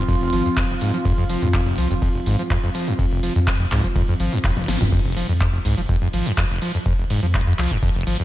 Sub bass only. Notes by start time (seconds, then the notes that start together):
0.33 G#1
1.05 F1
1.42 F2
1.78 C2
1.91 F1
2.26 G#1
2.99 F1
3.36 F2
3.71 C2
3.84 F1
4.20 G#1
4.44 D#1
4.68 G#1
4.81 F1
4.92 F1
5.29 F2
5.65 C2
5.78 F1
6.13 G#1
6.86 F1
7.23 F2
7.59 C2
7.71 F1
8.07 G#1